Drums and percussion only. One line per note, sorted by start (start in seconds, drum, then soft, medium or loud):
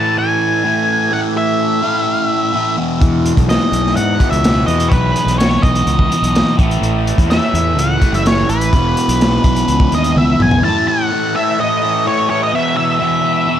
3.02 kick loud
3.02 closed hi-hat medium
3.26 closed hi-hat medium
3.37 kick medium
3.37 closed hi-hat medium
3.50 snare loud
3.50 closed hi-hat medium
3.73 closed hi-hat medium
3.87 snare soft
3.97 closed hi-hat medium
4.20 kick medium
4.20 closed hi-hat medium
4.33 closed hi-hat medium
4.44 snare loud
4.44 closed hi-hat medium
4.68 closed hi-hat medium
4.80 closed hi-hat medium
4.92 kick loud
4.92 closed hi-hat medium
5.16 closed hi-hat medium
5.28 closed hi-hat medium
5.40 snare loud
5.40 closed hi-hat medium
5.63 kick loud
5.63 closed hi-hat medium
5.75 closed hi-hat medium
5.87 closed hi-hat medium
5.99 kick medium
6.12 closed hi-hat medium
6.24 closed hi-hat medium
6.35 snare loud
6.35 closed hi-hat medium
6.59 kick loud
6.59 closed hi-hat medium
6.71 closed hi-hat medium
6.83 closed hi-hat medium
7.07 closed hi-hat medium
7.18 kick medium
7.18 closed hi-hat medium
7.31 snare loud
7.31 closed hi-hat medium
7.55 closed hi-hat medium
7.79 closed hi-hat medium
8.02 kick medium
8.02 closed hi-hat medium
8.14 closed hi-hat medium
8.26 snare loud
8.26 closed hi-hat medium
8.49 closed hi-hat medium
8.61 closed hi-hat medium
8.73 kick medium
8.73 closed hi-hat medium
8.97 closed hi-hat medium
9.09 closed hi-hat medium
9.21 snare loud
9.21 closed hi-hat medium
9.44 kick loud
9.44 closed hi-hat medium
9.56 closed hi-hat medium
9.68 closed hi-hat medium
9.80 kick medium
9.92 closed hi-hat medium
10.04 closed hi-hat medium
10.16 high tom medium
10.40 mid tom medium
10.51 floor tom medium